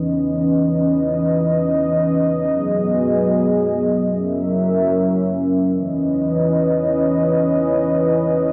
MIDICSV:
0, 0, Header, 1, 2, 480
1, 0, Start_track
1, 0, Tempo, 500000
1, 8185, End_track
2, 0, Start_track
2, 0, Title_t, "Analog synth pad"
2, 0, Program_c, 0, 89
2, 0, Note_on_c, 0, 52, 78
2, 0, Note_on_c, 0, 61, 69
2, 0, Note_on_c, 0, 71, 72
2, 0, Note_on_c, 0, 75, 88
2, 2351, Note_off_c, 0, 52, 0
2, 2351, Note_off_c, 0, 61, 0
2, 2351, Note_off_c, 0, 71, 0
2, 2382, Note_on_c, 0, 59, 74
2, 2383, Note_on_c, 0, 54, 80
2, 2383, Note_on_c, 0, 68, 73
2, 3901, Note_off_c, 0, 75, 0
2, 3923, Note_off_c, 0, 59, 0
2, 3924, Note_off_c, 0, 54, 0
2, 3924, Note_off_c, 0, 68, 0
2, 3938, Note_on_c, 0, 54, 80
2, 3938, Note_on_c, 0, 61, 72
2, 3939, Note_on_c, 0, 70, 70
2, 3939, Note_on_c, 0, 76, 85
2, 5479, Note_off_c, 0, 54, 0
2, 5479, Note_off_c, 0, 61, 0
2, 5480, Note_off_c, 0, 70, 0
2, 5480, Note_off_c, 0, 76, 0
2, 5493, Note_on_c, 0, 52, 78
2, 5493, Note_on_c, 0, 61, 74
2, 5494, Note_on_c, 0, 71, 73
2, 5494, Note_on_c, 0, 75, 87
2, 8185, Note_off_c, 0, 52, 0
2, 8185, Note_off_c, 0, 61, 0
2, 8185, Note_off_c, 0, 71, 0
2, 8185, Note_off_c, 0, 75, 0
2, 8185, End_track
0, 0, End_of_file